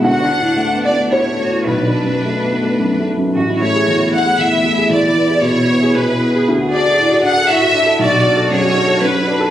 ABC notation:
X:1
M:3/4
L:1/16
Q:1/4=116
K:A
V:1 name="Violin section"
f6 d2 c4 | B8- B2 z2 | z2 c4 f2 e4 | d4 c4 B4 |
z2 d4 f2 e4 | d4 c4 B4 |]
V:2 name="Cello"
F2 D6 E2 F2 | D8- D2 z2 | F2 E2 F2 E6- | E8 G4- |
G8 F2 E2 | F4 G2 F2 D4 |]
V:3 name="Upright piano"
f6 d2 c4 | B8- B2 z2 | z12 | z12 |
z12 | z12 |]
V:4 name="Upright piano"
(3D,,2 D2 A,,2 (3A,2 B,2 A,2 (3A,,2 A,2 A,,2 | (3B,,,2 D2 F,,2 (3A,2 B,2 A,2 (3F,,2 A,2 F,,2 | A,,, E A, G E,, E A, G E,, E A, G | E,, E B, G B,, E B, G B,, E B, G |
D,, F D A A,, F D A A,, F D A | B,,, F D A F,, F D A F,, F D A |]